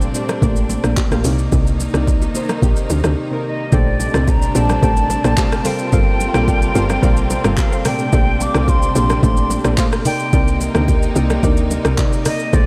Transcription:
Already playing: A#2 C3 G3 A3 C4 D4 G4 C5 D5
0.02 shaker
0.14 A#2 A3 G4 C5 D5, high bongo, shaker
0.29 cross-stick, low bongo, shaker
0.41 A1 A3 A#3 G4 C5 D5, kick, low conga, shaker
0.56 shaker
0.69 low bongo, shaker
0.84 A#1, cross-stick, shaker
0.97 kick, clap, high bongo, shaker
1.10 A#1 A#2 A3 G4 C5 F5, cross-stick, shaker
1.24 C2 C3 D#3 A#3 D#4 C#5, open hi-hat, low conga, shaker
1.33 D5
1.39 shaker
1.52 C2, kick, low conga, shaker
1.67 shaker
1.80 low bongo, shaker
1.93 C2 C3 A#3 D#4 D5, cross-stick, shaker
2.07 kick, high bongo, shaker
2.22 high bongo, shaker
2.34 C3 A#3 D#4 C5, high bongo, shaker
2.49 cross-stick, low bongo, shaker
2.61 A#1 C3 A#3 D#4 G4, kick, low conga, shaker
2.76 shaker
2.90 D2, low bongo, shaker
3.04 D2, cross-stick, shaker
3.31 C3 A#3 D#4 A#4
3.46 D#5
3.71 A#1 A#2 C3 G3 A3 C4 D4 G4 A4 C5 D5 G5, kick, low conga, shaker
4.00 low bongo, shaker
4.13 C2 A#2 A3 G4 C5 D5, cross-stick, shaker
4.27 A#5, kick, high bongo, shaker
4.42 shaker
4.54 A#1 A#2 A3 G4 A4 C5 D5 G5 A5, high bongo, shaker
4.69 cross-stick, low bongo, shaker
4.81 A1 A3 A#3 G4 A4 C5 D5 G5, kick, low conga, shaker
4.97 shaker
5.10 low bongo, shaker
5.24 A#1 A4 C5 D5 G5, cross-stick, shaker
5.36 A#2 A3 G4 C5 F5, kick, clap, high bongo, shaker
5.52 cross-stick, shaker
5.64 G3 A#3 F4 A4 A#4 C5 F5 G5, open hi-hat, low conga, shaker
5.79 shaker
5.92 G1 A4 A#4 C5 F5, kick, low conga, shaker
6.20 low bongo, shaker
6.33 A#1 G3 F4 A4 A#4 D5, cross-stick, shaker
6.48 kick, high bongo, shaker
6.62 shaker
6.74 G1 G3 F4 A4 A#4 C5 F5, high bongo, shaker
6.90 cross-stick, low bongo, shaker
7.02 A#1 G3 F4 A4 A#4 C5 D5 F5, kick, low conga, shaker
7.17 shaker
7.30 low bongo, shaker
7.44 G1 A4 A#4 C5 F5, cross-stick, shaker
7.57 G3 F4 A4 A#4 C5 F5, kick, clap, high bongo, shaker
7.72 A4 A#4 C5 F5, shaker
7.84 A#2 G3 A3 D4 G4 C5 D5 G5, cross-stick, open hi-hat, low conga, shaker
7.99 shaker
8.13 A#1 G4 A4 C5 D5, kick, low conga, shaker
8.40 D6, low bongo, shaker
8.54 C2 A#2 A3 G4 C5 F5, cross-stick, shaker
8.68 C6, kick, high bongo, shaker
8.83 shaker
8.94 A#1 A#2 A3 G4 A4 C5 D5 F5 C6, high bongo, shaker
9.10 cross-stick, low bongo, shaker
9.22 A1 A3 A#3 G4 A4 C5 D5 C6, kick, low conga, shaker
9.37 shaker
9.50 low bongo, shaker
9.65 A#1 G4 A4 C5 D5, cross-stick, shaker
9.77 A#2 A3 G4 C5 F5, kick, clap, high bongo, shaker
9.93 cross-stick, shaker
10.04 C3 A#3 D#4 A#4 D5 G5, open hi-hat, low conga, shaker
10.19 shaker
10.33 C2 D#4 A#4 D5, kick, low conga, shaker
10.48 shaker
10.61 low bongo, shaker
10.74 D2 C3 A#3 D#4 A#4, cross-stick, shaker
10.88 kick, high bongo, shaker
11.03 shaker
11.15 C2 C3 A#3 D#4 A#4 D5, high bongo, shaker
11.30 cross-stick, low bongo, shaker
11.42 D2 C3 A#3 D#4 A#4 D5, kick, low conga, shaker
11.57 shaker
11.71 low bongo, shaker
11.85 C2 D#4 A#4 D5, cross-stick, shaker
11.97 C3 A#3 D#4 D5, kick, clap, high bongo, shaker
12.13 shaker
12.25 D#4 A#4 D5 D#5, cross-stick, open hi-hat, low conga, shaker
12.39 shaker
12.52 A#1 A#2 C3 G3 A3 C4 D4 G4 A4 C5 D5, kick, low conga, shaker

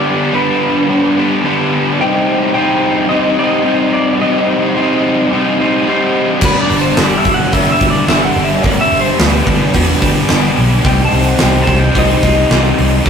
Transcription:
Already playing: G2 D3 G3 B3 D4 D5
0.32 D3 G3 B3 D4 B4
0.88 G2 D3 G3 B3 D4
1.16 G3 B3 D4
1.43 D3 G3 B3 D4
1.99 C3 G3 C4 D#4 G5
2.54 C3 G3 C4 D#4 G5
3.09 C3 G3 C4 D#4 D#5
3.37 G3 C4 D#4 D#5
3.63 C3 G3 C4 D#4
3.80 D5
3.93 D5
4.20 C3 G3 C4 D#4 D#5
4.76 C3 G3 C4 D#4
5.31 C3 G3 C4 D#4
5.59 G3 C4 D#4
5.87 C3 G3 C4 D#4
6.41 G1 G2 D3 G3 B3 D4 B4, kick, crash
6.62 D5
6.70 G1, open hi-hat
6.81 C5
6.97 G1 D3 G3 B3 D4 D5, snare, open hi-hat
7.17 E5
7.24 G1, kick, open hi-hat
7.34 F#5
7.52 G1 G2 D3 G3 B3 D4 E5, kick, open hi-hat
7.72 E5
7.79 G1 G3 B3 D4, kick, open hi-hat
7.90 D5
8.08 G1 D3 G3 B3 D4 E5, snare, open hi-hat
8.25 F#5
8.36 G1, open hi-hat
8.44 E5
8.62 G1 G2 D3 G3 B3 D4 D5, kick, open hi-hat
8.81 E5
8.92 G1, open hi-hat
9.01 C5
9.18 D2 D3 G3 B3 D4 B4, snare, open hi-hat
9.46 G1, kick, open hi-hat
9.73 E2 G2 D3 G3 B3 D4, kick, open hi-hat
10.01 G1 G3 B3 D4, kick, open hi-hat
10.28 G1 D3 G3 B3 D4, snare, open hi-hat
10.57 B1, open hi-hat
10.84 C2 C3 G3 C4 D#4 G5, kick, open hi-hat
11.05 A5
11.12 C2, open hi-hat
11.26 F#5
11.39 C2 C3 G3 C4 D#4, snare, open hi-hat
11.44 G5
11.61 A5
11.67 C2, kick, open hi-hat
11.79 G5
11.94 C2 C3 G3 C4 D#4, kick, open hi-hat
11.99 D#5
12.23 C2 G3 C4 D#4, kick, open hi-hat
12.50 C2 C3 G3 C4 D#4, snare, open hi-hat
12.78 C2, open hi-hat
13.05 G1 G2 D3 G3 B3, kick, open hi-hat

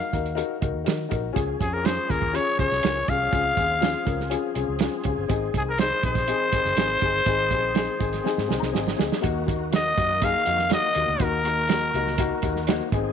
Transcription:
Already playing: F5
0.13 D#2 D#4 F#4 A#4, kick, closed hi-hat
0.26 closed hi-hat
0.35 D#4 F#4 A#4, closed hi-hat
0.61 C#2 D#4 F#4 A#4, kick, closed hi-hat
0.74 D#2
0.84 D#3 D#4 F#4 A#4, snare, closed hi-hat
1.09 A#1 D#4 F#4 A#4, kick, closed hi-hat
1.33 C#2 F3 C#4 F4 G#4, kick, closed hi-hat
1.60 F2 C#4 F4 G#4, kick, closed hi-hat
1.73 A#4
1.83 C#4 F4 G#4 C5, snare, closed hi-hat
2.08 D#2 C#4 F4 G#4 A#4, kick, closed hi-hat
2.22 kick
2.33 C#4 F4 G#4 C#5, closed hi-hat
2.57 C#2 C#4 F4 G#4 C#5, kick, closed hi-hat
2.71 C2, snare, closed hi-hat
2.83 C#2 C#4 F4 A#4, snare, closed hi-hat
3.08 C2 C#4 F4 G#4 F5, kick, closed hi-hat
3.31 C#2 C4 C#4 F4 G#4, kick, closed hi-hat
3.57 D#2 C#4 F4 G#4, kick, closed hi-hat
3.80 C#4 F4 G#4, snare, closed hi-hat
4.05 C#2 C#4 F4 A#4, kick, closed hi-hat
4.20 snare
4.30 C#4 F4 G#4, closed hi-hat
4.54 C2 C#4 F4 G#4, closed hi-hat
4.68 C#2
4.79 C#4 F4 G#4, snare, closed hi-hat
5.03 C#2 C#4 F4 G#4, kick, closed hi-hat
5.17 G1
5.28 G#1 D#3 C4 D#4 G#4, kick, closed hi-hat
5.54 C2 C4 D#4 G#4, kick, closed hi-hat
5.58 G#4
5.69 A#4
5.78 C4 D#4 G#4 C5, snare, closed hi-hat
6.03 A#1 C4 D#4 G#4 C5, kick, closed hi-hat
6.15 kick, snare, closed hi-hat
6.28 C4 D#4 G#4, closed hi-hat
6.52 G#1 C4 D#4 G#4, kick, closed hi-hat
6.65 F#1, snare
6.76 G#1 C4 D#4 G#4, snare, closed hi-hat
7.01 G1 C4 D#4 G#4, kick, closed hi-hat
7.26 G#1 C4 D#4 G#4, kick, closed hi-hat
7.51 A#1 C4 D#4 G#4, kick, closed hi-hat
7.74 C4 D#4 G#4, snare, closed hi-hat
8.00 G#1 C4 D#4 G#4, kick, closed hi-hat
8.13 snare, closed hi-hat
8.24 C4 D#4 G#4, snare
8.38 G#2, snare
8.48 C2 C4 D#4 G#4 G#5, snare
8.60 C2 A#5, snare
8.72 G#1 C4 D#4 G#4 G#5, snare
8.88 snare
8.96 D2 C4 D#4 G#4, snare
9.12 snare
9.21 D#2 D#3 A#3 D#4 F#4, kick, closed hi-hat
9.46 A#3 D#4 F#4, kick, closed hi-hat
9.71 A#3 D#4 F#4, snare, closed hi-hat
9.76 D#5
9.96 F#2 A#3 D#4 F#4, kick, closed hi-hat
10.21 A#3 D#4 G#4 F5, kick, closed hi-hat
10.46 F2 A#3 D#4 F#4, closed hi-hat
10.59 snare
10.70 A#3 D#4 F#4, snare, closed hi-hat
10.74 D#5
10.94 D#2 A#3 D#4 F#4, closed hi-hat
11.08 D2
11.19 D#2 A#3 D#4 F#4 A#4, kick, closed hi-hat
11.44 A#3 D#4 F#4, closed hi-hat
11.69 A#3 D#4 F#4, snare, closed hi-hat
11.94 C#2 A#3 D#4 F#4, closed hi-hat
12.07 snare
12.18 A#3 D#4 F#4, kick, closed hi-hat
12.42 D#2 A#3 D#4 F#4, kick, closed hi-hat
12.56 snare
12.67 A#3 D#4 F#4 C5, snare, closed hi-hat
12.92 G#1 B3 C4 D#4 G#4, kick, closed hi-hat
12.98 C4

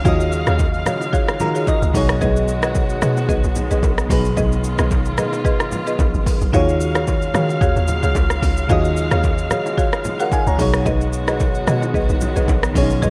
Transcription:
Already playing: C#3 F#3 G#3 F5
0.04 D#2 D#3 D#4 F4 F#4 G#4 C#5 D#5 F5, kick, low conga, shaker
0.20 shaker
0.32 shaker
0.46 D#2 F#4 G#4 C#5 F5, cross-stick, low bongo, shaker
0.59 kick, high bongo, shaker
0.73 shaker
0.85 F#4 G#4 C#5 F5, cross-stick, low conga, shaker
1.01 low bongo, shaker
1.12 F#4 G#4 C#5 F5, kick, shaker
1.28 cross-stick, shaker
1.39 D#3 D#4 F4 F#4 G#4 A#4 A#5, low bongo, low conga, shaker
1.54 F#4 G#4 C#5 F5, shaker
1.67 D#5, kick, high bongo, shaker
1.82 C#2, shaker
1.93 B1 B2 D#3 F#3 B3 D#4 F#4 G#4 C#5, kick, open hi-hat, high bongo, shaker
2.09 cross-stick, shaker
2.21 B1 G#4 B4 D#5, kick, low conga, shaker
2.36 shaker
2.48 shaker
2.63 G#4 B4 D#5, cross-stick, low bongo, shaker
2.75 kick, high bongo, shaker
2.89 shaker
3.02 B2 G#4 B4 D#5, cross-stick, low conga, shaker
3.17 low bongo, shaker
3.29 B1 G#4 B4 D#5, kick, shaker
3.44 B1, shaker
3.56 low bongo, low conga, shaker
3.71 A#1 G#4 B4 D#5, shaker
3.83 A#1, kick, high bongo, shaker
3.98 cross-stick, shaker
4.09 A#1 B2 F#3 D#4 F4 G#4 B4, kick, open hi-hat, high bongo, shaker
4.25 shaker
4.37 B1 G#4 B4 D#5, kick, low conga, shaker
4.52 shaker
4.64 shaker
4.79 B1 G#4 B4 D#5, cross-stick, low bongo, shaker
4.91 kick, high bongo, shaker
5.06 shaker
5.18 G#4 B4 D#5, cross-stick, high bongo, low conga, shaker
5.33 low bongo, shaker
5.45 G#4 B4 D#5, kick, shaker
5.60 cross-stick, shaker
5.72 low bongo, low conga, shaker
5.87 G#4 B4 D#5, shaker
5.99 A#1, kick, high bongo, shaker
6.14 G#1, shaker
6.26 kick, open hi-hat, high bongo, shaker
6.41 B1, shaker
6.52 D#2 C#3 D#3 F#3 G#3 D#4 F4 F#4 G#4 C#5 F5, kick, low conga, shaker
6.69 shaker
6.81 shaker
6.95 F#4 G#4 C#5 F5, cross-stick, low bongo, shaker
7.07 kick, high bongo, shaker
7.22 shaker
7.34 D#3 F#4 G#4 C#5 F5, cross-stick, low conga, shaker
7.49 low bongo, shaker
7.61 D#2 F#4 G#4 C#5 F5, kick, shaker
7.76 D#2, shaker
7.88 low bongo, low conga, shaker
8.03 C#2 F#4 G#4 C#5 F5, shaker
8.15 C#2, kick, high bongo, shaker
8.30 cross-stick, shaker
8.43 C#2, kick, open hi-hat, high bongo, shaker
8.57 shaker
8.68 D#2 D#3 D#4 F4 F#4 G#4 C#5 D#5 F5, kick, low conga, shaker
8.85 shaker
8.97 shaker
9.11 D#2 F#4 G#4 C#5 F5, cross-stick, low bongo, shaker
9.24 kick, high bongo, shaker
9.38 shaker
9.51 F#4 G#4 C#5 F5, cross-stick, low conga, shaker
9.66 low bongo, shaker
9.77 F#4 G#4 C#5 F5, kick, shaker
9.93 cross-stick, shaker
10.04 low bongo, low conga, shaker
10.19 F#4 G#4 A#4 C#5 F5 F#5, shaker
10.32 G#5, kick, high bongo, shaker
10.47 C#2 C#5 A#5, shaker
10.58 B1 B2 D#3 F#3 B3 D#4 F#4 G#4 C#5, kick, open hi-hat, high bongo, shaker
10.74 cross-stick, shaker
10.86 B1 G#4 B4 D#5, kick, low conga, shaker
11.01 shaker
11.13 shaker
11.27 G#4 B4 D#5, cross-stick, low bongo, shaker
11.40 kick, high bongo, shaker
11.55 shaker
11.67 B2 G#4 B4 D#5, cross-stick, low conga, shaker
11.82 low bongo, shaker
11.94 B1 G#4 B4 D#5, kick, shaker
12.09 B1, shaker
12.21 low bongo, low conga, shaker
12.36 A#1 G#4 B4 D#5, shaker
12.48 A#1, kick, high bongo, shaker
12.63 cross-stick, shaker
12.74 A#1 B2 F#3 C#4 F4 G#4 C#5, kick, open hi-hat, high bongo, shaker
12.82 D#4
12.90 shaker
13.02 B1 G#4 B4 D#5, kick, low conga, shaker

